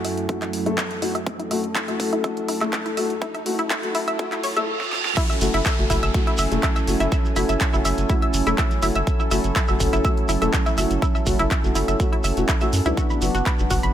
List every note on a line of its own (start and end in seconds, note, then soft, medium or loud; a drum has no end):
0.00 4.64 F#2 medium
0.00 4.64 F#3 medium
0.00 0.26 A3 medium
0.00 4.64 A3 medium
0.00 0.26 E4 medium
0.00 4.64 E4 medium
0.00 0.26 F#4 medium
0.00 1.23 G#5 medium
0.00 riser medium
0.05 0.13 E5 medium
0.05 open hi-hat loud
0.17 closed hi-hat soft
0.29 0.63 A3 medium
0.29 0.63 E4 medium
0.29 0.41 E4 medium
0.29 0.63 F#4 medium
0.29 kick loud
0.29 closed hi-hat medium
0.42 0.50 E5 medium
0.42 clap soft
0.42 closed hi-hat soft
0.53 open hi-hat loud
0.66 0.99 A3 medium
0.66 0.99 E4 medium
0.66 0.77 E4 medium
0.66 0.99 A4 medium
0.66 closed hi-hat soft
0.78 0.86 E5 medium
0.78 kick loud
0.78 clap loud
0.78 closed hi-hat medium
0.91 closed hi-hat soft
1.02 1.13 A3 medium
1.02 1.13 E4 medium
1.02 1.14 E4 medium
1.02 1.13 F#4 medium
1.02 open hi-hat loud
1.15 1.23 E5 medium
1.15 closed hi-hat soft
1.26 4.65 A4 medium
1.26 kick loud
1.26 closed hi-hat medium
1.39 1.50 E4 medium
1.39 closed hi-hat soft
1.51 1.58 A3 medium
1.51 1.58 E4 medium
1.51 1.58 F#4 loud
1.51 1.60 E5 medium
1.51 open hi-hat loud
1.64 closed hi-hat soft
1.75 1.88 E4 medium
1.75 kick loud
1.75 clap loud
1.75 closed hi-hat medium
1.88 2.21 A3 medium
1.88 2.21 E4 medium
1.88 2.21 F#4 medium
1.88 1.96 E5 medium
1.88 closed hi-hat soft
2.00 kick medium
2.00 open hi-hat loud
2.13 2.24 E4 medium
2.13 closed hi-hat soft
2.24 2.58 A3 medium
2.24 2.58 E4 medium
2.24 2.58 F#4 medium
2.24 2.33 E5 medium
2.24 kick loud
2.24 closed hi-hat medium
2.37 closed hi-hat soft
2.48 2.61 E4 medium
2.48 open hi-hat loud
2.61 2.94 A3 medium
2.61 2.94 E4 medium
2.61 2.95 A4 medium
2.61 2.69 E5 medium
2.61 clap soft
2.61 closed hi-hat soft
2.73 kick loud
2.73 clap loud
2.73 closed hi-hat medium
2.86 2.97 E4 medium
2.86 closed hi-hat soft
2.97 3.08 A3 medium
2.97 3.08 E4 medium
2.97 3.08 F#4 medium
2.97 3.06 E5 medium
2.97 open hi-hat loud
3.10 closed hi-hat soft
3.22 3.34 E4 medium
3.22 kick loud
3.22 closed hi-hat medium
3.34 3.42 E5 medium
3.34 closed hi-hat soft
3.46 3.53 A3 medium
3.46 3.53 E4 medium
3.46 3.53 F#4 loud
3.46 open hi-hat loud
3.59 3.70 E4 medium
3.59 closed hi-hat soft
3.70 3.79 E5 medium
3.70 kick loud
3.70 clap loud
3.70 closed hi-hat medium
3.83 4.16 A3 medium
3.83 4.16 E4 medium
3.83 4.17 F#4 medium
3.83 closed hi-hat soft
3.95 4.07 E4 medium
3.95 open hi-hat loud
4.08 4.15 E5 medium
4.08 closed hi-hat soft
4.19 4.53 A3 medium
4.19 4.53 E4 medium
4.19 4.53 F#4 medium
4.19 kick loud
4.19 closed hi-hat medium
4.19 reverse cymbal medium
4.32 4.43 E4 medium
4.32 clap soft
4.32 closed hi-hat soft
4.44 4.56 C#5 medium
4.44 open hi-hat loud
4.56 4.68 A3 medium
4.56 4.68 E4 medium
4.56 4.68 A4 medium
4.56 4.61 E5 medium
4.56 closed hi-hat soft
4.81 snare medium
4.92 snare medium
5.05 snare medium
5.17 12.93 F#3 medium
5.17 12.93 C#4 medium
5.17 5.29 E4 medium
5.17 12.93 E4 medium
5.17 12.93 A4 medium
5.17 5.29 E5 medium
5.17 12.93 G#5 medium
5.17 kick loud
5.17 closed hi-hat medium
5.17 crash loud
5.17 downlifter medium
5.17 shekere medium
5.30 5.37 E5 medium
5.30 5.37 E6 medium
5.30 shekere soft
5.41 5.49 F#1 loud
5.41 5.48 A3 medium
5.41 5.48 E4 medium
5.41 5.48 F#4 loud
5.41 open hi-hat loud
5.41 shekere medium
5.53 5.61 F#1 medium
5.53 5.65 E4 medium
5.53 5.64 E5 medium
5.53 closed hi-hat medium
5.53 shekere soft
5.66 5.74 E5 medium
5.66 5.74 E6 medium
5.66 kick loud
5.66 clap loud
5.66 closed hi-hat medium
5.66 shekere medium
5.78 5.86 F#1 medium
5.78 6.12 A3 medium
5.78 6.12 E4 medium
5.78 6.12 F#4 medium
5.78 shekere soft
5.90 5.98 F#1 loud
5.90 6.02 E4 medium
5.90 6.02 E5 medium
5.90 kick medium
5.90 open hi-hat loud
5.90 shekere medium
6.03 6.10 F#1 medium
6.03 6.11 E5 medium
6.03 6.11 E6 medium
6.03 closed hi-hat medium
6.03 shekere soft
6.14 6.49 A3 medium
6.14 6.49 E4 medium
6.14 6.49 F#4 medium
6.14 kick loud
6.14 closed hi-hat medium
6.14 shekere soft
6.27 6.38 E4 medium
6.27 6.38 E5 medium
6.27 closed hi-hat soft
6.37 6.47 F#1 loud
6.37 6.47 E5 medium
6.37 6.47 E6 medium
6.37 open hi-hat loud
6.37 shekere loud
6.51 6.59 E1 medium
6.51 6.85 A3 medium
6.51 6.85 E4 medium
6.51 6.85 A4 medium
6.51 closed hi-hat medium
6.51 shekere soft
6.63 6.75 E4 medium
6.63 6.75 E5 medium
6.63 kick loud
6.63 clap loud
6.63 closed hi-hat medium
6.63 shekere soft
6.76 6.84 E5 medium
6.76 6.84 E6 medium
6.76 closed hi-hat soft
6.76 shekere soft
6.88 6.96 F#1 medium
6.88 6.99 A3 medium
6.88 6.99 E4 medium
6.88 6.99 F#4 medium
6.88 open hi-hat loud
6.88 shekere medium
7.00 7.08 F#1 medium
7.00 7.11 E4 medium
7.00 7.11 E5 medium
7.00 closed hi-hat medium
7.00 shekere soft
7.12 7.21 E5 medium
7.12 7.21 E6 medium
7.12 kick loud
7.12 closed hi-hat medium
7.12 shekere medium
7.25 shekere soft
7.36 7.45 F#1 loud
7.36 7.43 A3 medium
7.36 7.49 E4 medium
7.36 7.43 E4 medium
7.36 7.43 F#4 loud
7.36 7.48 E5 medium
7.36 open hi-hat loud
7.36 shekere medium
7.49 7.57 F#1 medium
7.49 7.57 E5 medium
7.49 7.57 E6 medium
7.49 closed hi-hat medium
7.49 shekere soft
7.61 kick loud
7.61 clap loud
7.61 closed hi-hat medium
7.61 shekere medium
7.73 7.81 F#1 medium
7.73 8.07 A3 medium
7.73 7.85 E4 medium
7.73 8.07 E4 medium
7.73 8.07 F#4 medium
7.73 7.84 E5 medium
7.73 shekere soft
7.85 7.93 F#1 loud
7.85 7.94 E5 medium
7.85 7.94 E6 medium
7.85 open hi-hat loud
7.85 shekere loud
7.98 8.05 F#1 medium
7.98 closed hi-hat medium
7.98 shekere soft
8.09 8.44 A3 medium
8.09 8.22 E4 medium
8.09 8.44 E4 medium
8.09 8.44 F#4 medium
8.09 8.21 E5 medium
8.09 kick loud
8.09 closed hi-hat medium
8.09 shekere medium
8.22 8.30 E5 medium
8.22 8.30 E6 medium
8.22 closed hi-hat soft
8.34 8.42 F#1 loud
8.34 open hi-hat loud
8.34 shekere loud
8.47 8.54 E1 medium
8.47 8.80 A3 medium
8.47 8.58 E4 medium
8.47 8.80 E4 medium
8.47 8.80 A4 medium
8.47 8.57 E5 medium
8.47 closed hi-hat medium
8.47 shekere soft
8.58 8.67 E5 medium
8.58 8.67 E6 medium
8.58 kick loud
8.58 clap loud
8.58 closed hi-hat medium
8.58 shekere medium
8.71 closed hi-hat soft
8.71 shekere soft
8.82 8.91 F#1 medium
8.82 8.94 A3 medium
8.82 8.95 E4 medium
8.82 8.94 E4 medium
8.82 8.94 F#4 medium
8.82 8.94 E5 medium
8.82 open hi-hat loud
8.82 shekere medium
8.95 9.03 F#1 medium
8.95 9.03 E5 medium
8.95 9.03 E6 medium
8.95 closed hi-hat medium
8.95 shekere soft
9.07 kick loud
9.07 closed hi-hat medium
9.07 shekere soft
9.20 9.31 E4 medium
9.20 9.30 E5 medium
9.20 shekere soft
9.31 9.40 F#1 loud
9.31 9.38 A3 medium
9.31 9.38 E4 medium
9.31 9.38 F#4 loud
9.31 9.40 E5 medium
9.31 9.40 E6 medium
9.31 open hi-hat loud
9.31 shekere loud
9.44 9.52 F#1 medium
9.44 closed hi-hat medium
9.44 shekere soft
9.56 9.68 E4 medium
9.56 9.67 E5 medium
9.56 kick loud
9.56 clap loud
9.56 closed hi-hat medium
9.56 shekere medium
9.68 9.76 F#1 medium
9.68 10.02 A3 medium
9.68 10.02 E4 medium
9.68 10.02 F#4 medium
9.68 9.76 E5 medium
9.68 9.76 E6 medium
9.68 shekere soft
9.80 9.88 F#1 loud
9.80 kick medium
9.80 open hi-hat loud
9.80 shekere loud
9.93 10.00 F#1 medium
9.93 10.04 E4 medium
9.93 10.03 E5 medium
9.93 closed hi-hat soft
9.93 shekere soft
10.04 10.39 A3 medium
10.04 10.39 E4 medium
10.04 10.39 F#4 medium
10.04 10.13 E5 medium
10.04 10.13 E6 medium
10.04 kick loud
10.04 closed hi-hat medium
10.04 shekere medium
10.17 closed hi-hat soft
10.29 10.37 F#1 loud
10.29 10.41 E4 medium
10.29 10.41 E5 medium
10.29 open hi-hat loud
10.29 shekere medium
10.42 10.49 E1 medium
10.42 10.75 A3 medium
10.42 10.75 E4 medium
10.42 10.75 A4 loud
10.42 10.50 E5 medium
10.42 10.50 E6 medium
10.42 closed hi-hat medium
10.42 shekere soft
10.53 kick loud
10.53 clap loud
10.53 closed hi-hat medium
10.53 shekere medium
10.66 10.77 E4 medium
10.66 10.77 E5 medium
10.66 closed hi-hat soft
10.66 shekere soft
10.78 10.86 F#1 medium
10.78 10.89 A3 medium
10.78 10.89 E4 medium
10.78 10.89 F#4 medium
10.78 10.86 E5 medium
10.78 10.86 E6 medium
10.78 open hi-hat loud
10.78 shekere loud
10.90 10.98 F#1 medium
10.90 closed hi-hat medium
10.90 shekere soft
11.02 11.14 E4 medium
11.02 11.14 E5 medium
11.02 kick loud
11.02 closed hi-hat medium
11.02 shekere medium
11.15 11.23 E5 medium
11.15 11.23 E6 medium
11.15 shekere soft
11.26 11.35 F#1 medium
11.26 11.34 A3 medium
11.26 11.34 E4 medium
11.26 11.34 F#4 loud
11.26 kick medium
11.26 open hi-hat loud
11.26 shekere loud
11.39 11.47 F#1 medium
11.39 11.50 E4 medium
11.39 11.50 E5 medium
11.39 closed hi-hat soft
11.39 shekere soft
11.51 11.60 E5 medium
11.51 11.60 E6 medium
11.51 kick loud
11.51 clap loud
11.51 closed hi-hat medium
11.51 shekere medium
11.64 11.71 F#1 medium
11.64 11.97 A3 medium
11.64 11.97 E4 medium
11.64 11.97 F#4 medium
11.64 shekere soft
11.75 11.84 F#1 loud
11.75 11.88 E4 medium
11.75 11.87 E5 medium
11.75 open hi-hat loud
11.75 shekere loud
11.88 11.96 F#1 medium
11.88 11.96 E5 medium
11.88 11.96 E6 medium
11.88 closed hi-hat soft
11.88 shekere soft
12.00 12.34 A3 medium
12.00 12.34 E4 medium
12.00 12.34 F#4 medium
12.00 kick loud
12.00 closed hi-hat medium
12.00 shekere medium
12.13 12.24 E4 medium
12.13 12.23 E5 soft
12.13 closed hi-hat soft
12.24 12.32 F#1 loud
12.24 12.33 E5 medium
12.24 12.33 E6 medium
12.24 open hi-hat loud
12.24 shekere loud
12.37 12.44 E1 medium
12.37 12.47 A3 medium
12.37 12.47 E4 medium
12.37 12.47 F#4 medium
12.37 closed hi-hat soft
12.37 shekere soft
12.48 12.61 E4 medium
12.48 12.60 E5 medium
12.48 kick loud
12.48 clap loud
12.48 closed hi-hat medium
12.48 shekere soft
12.61 12.68 A3 medium
12.61 12.68 E4 medium
12.61 12.68 F#4 loud
12.61 12.69 E5 medium
12.61 12.69 E6 medium
12.61 closed hi-hat soft
12.61 shekere soft
12.73 12.81 F#2 medium
12.73 open hi-hat loud
12.73 shekere medium
12.86 12.93 C#2 medium
12.86 13.19 F#3 medium
12.86 13.19 B3 medium
12.86 13.19 D4 medium
12.86 13.19 E4 loud
12.86 12.97 E4 medium
12.86 12.97 E5 medium
12.86 closed hi-hat soft
12.86 shekere soft
12.97 13.94 B3 medium
12.97 13.94 D4 medium
12.97 13.10 F#4 medium
12.97 13.94 F#4 medium
12.97 13.10 F#5 medium
12.97 kick loud
12.97 closed hi-hat medium
12.97 shekere medium
13.10 13.18 B5 medium
13.10 shekere soft
13.22 13.30 F#1 loud
13.22 13.29 F#3 medium
13.22 13.29 B3 medium
13.22 13.29 D4 medium
13.22 13.29 F#4 loud
13.22 open hi-hat loud
13.22 shekere medium
13.35 13.42 F#1 medium
13.35 13.46 F#4 medium
13.35 13.46 F#5 medium
13.35 closed hi-hat soft
13.35 shekere soft
13.46 13.55 B5 medium
13.46 kick loud
13.46 clap loud
13.46 closed hi-hat medium
13.46 shekere medium
13.59 13.66 F#1 medium
13.59 13.92 F#3 medium
13.59 13.92 B3 medium
13.59 13.92 D4 medium
13.59 13.92 F#4 medium
13.59 shekere soft
13.70 13.79 F#1 loud
13.70 13.83 F#4 medium
13.70 13.83 F#5 medium
13.70 kick medium
13.70 open hi-hat loud
13.70 shekere medium
13.83 13.91 F#1 medium
13.83 13.91 B5 medium
13.83 closed hi-hat soft
13.83 shekere soft